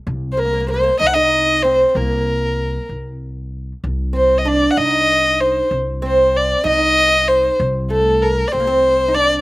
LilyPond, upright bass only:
\new Staff \with { instrumentName = "Upright bass" } { \clef bass \time 6/8 \key c \minor \tempo 4. = 64 c,4. c,4. | c,4. c,4. | c,4. c,4. | c,4. c,4. |
c,4. c,4. | }